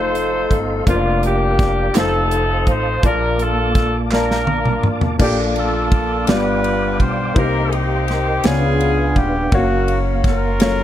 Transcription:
Already playing: upright bass F1, grand piano A3 D#4 F4 C5, horn section D#4 A4 C5, tonewheel organ A4 D#5 F5 C6
0.15 closed hi-hat
0.51 upright bass G1, kick, closed hi-hat
0.86 upright bass F1, grand piano A#3 D4 F4 C5, horn section A#3 D4 F4, tonewheel organ A#4 D5 F5 D6, kick, closed hi-hat
0.95 grand piano D5
1.23 horn section A#3 D4 G4, closed hi-hat
1.59 kick, snare, closed hi-hat
1.94 upright bass F1, grand piano A3 D#4 F4 C5, horn section C4 D#4 A4, tonewheel organ C5 A5 D#6, snare, clap, closed hi-hat
2.31 closed hi-hat
2.67 upright bass A1, horn section C5, kick, closed hi-hat
3.03 upright bass A#1, grand piano A#2 A#3 F4 D5 A5, tonewheel organ A#3 D6, horn section D4 F4 A#4, kick, closed hi-hat
3.39 horn section D4 F4 A4, closed hi-hat
3.75 kick, snare, closed hi-hat
4.11 grand piano A#3 F4 D5 A5, horn section D4 F4 A#4, snare, clap
4.31 snare
4.47 high tom
4.65 mid tom
4.83 upright bass A1, mid tom
5.01 floor tom
5.18 upright bass A#1, grand piano A#2 A#3 D4 F4 A4 D5, tonewheel organ A#3 F5 A5 D6, horn section D4 G4, kick, crash
5.56 horn section D4 F4 A4, ride
5.92 kick, ride
6.27 upright bass G1, grand piano G2 B3 D4 F4 G4 D5, horn section D4 F4 B4, tonewheel organ D5 G5 D6, snare, ride
6.64 ride
7.00 upright bass B1, horn section C5, kick, ride
7.34 upright bass C2, grand piano C3 A#3 C4 D#4 G4 C5, horn section D#4 G4 A#4, tonewheel organ A#4 D#5 C6, kick, ride
7.72 horn section A#3 D#4 G4, ride
8.08 snare, ride
8.44 upright bass C#2, grand piano C#3 B3 D4 F4 G#4 C#5, horn section B3 F4 G#4, tonewheel organ D4 B4 F5, snare, ride
8.80 ride
9.16 upright bass D#1, horn section G4, kick, ride
9.51 upright bass F#1, grand piano A#3 C#4 F#4 C#5 F5, tonewheel organ A#3 F5, horn section A#3 C#4 F#4, kick, ride
9.88 ride
10.24 horn section C#4 F4 A#4, kick, snare, ride
10.60 grand piano F#3 A3 C#4 F4 C#5, snare, ride
10.66 grand piano A#3

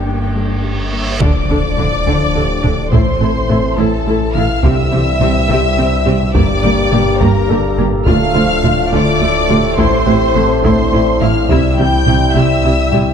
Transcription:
Already playing: sub bass G1, cello section G2, viola section A#3 D4, felt piano E4 E5, violin section G4 G5, reverse cymbal
0.36 synth pluck G3, felt piano A4
0.64 synth pluck G4
0.93 synth pluck A#3, violin section E5 E6
1.21 sub bass D1, double bass section D2, trombone section A2 F3, cello section D3, synth pluck D3, french horn section A3 D4, viola section D4 A4, violin section D5 D6, taiko, impact
1.49 double bass section D2, cello section D3, synth pluck F3, viola section D4 A4
1.78 double bass section D2, cello section D3, synth pluck F3, viola section D4 A4, taiko low-mid
2.06 double bass section D2, cello section D3, synth pluck D3, viola section D4 A4, taiko
2.35 double bass section D2, cello section D3, viola section D4 A4, felt piano G4
2.63 double bass section D2, cello section D3, synth pluck A3, viola section D4 A4, taiko low-mid
2.91 double bass section A1, sub bass A1, cello section A2, trombone section E3, synth pluck A3, viola section E4 A4, french horn section E4, violin section C5 C6, taiko
3.20 double bass section A1, cello section A2, synth pluck C4, viola section E4 A4
3.49 double bass section A1, cello section A2, synth pluck C4, viola section E4 A4, felt piano A4, taiko low-mid
3.78 double bass section A1, cello section A2, synth pluck A3, viola section E4 A4, violin section A4 A5, taiko
4.06 double bass section A1, cello section A2, viola section E4 A4
4.34 double bass section A1, cello section A2, synth pluck E4, viola section E4 A4, violin section F5 F6, taiko low-mid
4.63 double bass section C2, sub bass C2, trombone section G2 G3, cello section C3, synth pluck C3, french horn section C4, viola section C4 G4, felt piano G4, violin section E5 E6, taiko
4.92 double bass section C2, cello section C3, synth pluck E3, viola section C4 G4
5.20 double bass section C2, cello section C3, synth pluck E3, felt piano C4 C5, viola section C4 G4, taiko low-mid
5.49 double bass section C2, cello section C3, synth pluck C3, viola section C4 G4, taiko
5.78 double bass section C2, cello section C3, viola section C4 G4
6.06 double bass section C2, cello section C3, synth pluck G3, viola section C4 G4, taiko low-mid
6.34 sub bass G1, double bass section G1, cello section G2, synth pluck G3, trombone section A#3, viola section A#3 G4, french horn section D4 G4, violin section D5 D6, taiko
6.63 double bass section G1, cello section G2, viola section A#3 G4, synth pluck A#3
6.92 double bass section G1, cello section G2, viola section A#3 G4, synth pluck A#3, taiko low-mid
7.20 double bass section G1, cello section G2, synth pluck G3, viola section A#3 G4, violin section A#4 A#5, taiko
7.49 double bass section G1, cello section G2, viola section A#3 G4, felt piano A4
7.78 double bass section G1, cello section G2, viola section A#3 G4, synth pluck D4, taiko low-mid
8.06 sub bass D1, cello section D2, double bass section D2, trombone section A2 A3, synth pluck D3, viola section A3 F4, french horn section F4, violin section F5 F6, taiko
8.34 cello section D2, double bass section D2, synth pluck F3, viola section A3 F4, felt piano C5
8.63 cello section D2, double bass section D2, synth pluck F3, viola section A3 F4, taiko low-mid
8.92 cello section D2, double bass section D2, synth pluck D3, viola section A3 F4, violin section D5 D6, taiko
9.21 cello section D2, double bass section D2, viola section A3 F4
9.48 cello section D2, double bass section D2, viola section A3 F4, synth pluck A3, felt piano G4, taiko low-mid
9.77 double bass section A1, sub bass A1, cello section A2, viola section A3 E4, synth pluck A3, french horn section C4 E4, violin section C5 C6, taiko
10.06 double bass section A1, cello section A2, viola section A3 E4, synth pluck C4, felt piano G4
10.35 double bass section A1, cello section A2, viola section A3 E4, synth pluck C4, taiko low-mid
10.62 double bass section A1, cello section A2, synth pluck A3, viola section A3 E4, felt piano D4 D5, violin section C5 C6, taiko
10.92 double bass section A1, cello section A2, viola section A3 E4
11.21 double bass section A1, cello section A2, viola section A3 E4, synth pluck E4, violin section F5 F6, taiko low-mid
11.49 sub bass C2, double bass section C2, cello section C3, synth pluck C3, trombone section C3 G3, viola section G3 E4, violin section E5 E6, taiko
11.78 double bass section C2, cello section C3, synth pluck E3, viola section G3 E4, violin section G5 G6
12.06 double bass section C2, cello section C3, synth pluck E3, viola section G3 E4, taiko low-mid
12.35 double bass section C2, synth pluck C3, cello section C3, viola section G3 E4, violin section E5 E6, taiko
12.63 double bass section C2, cello section C3, viola section G3 E4
12.92 double bass section C2, cello section C3, synth pluck G3, viola section G3 E4, felt piano G5, taiko low-mid

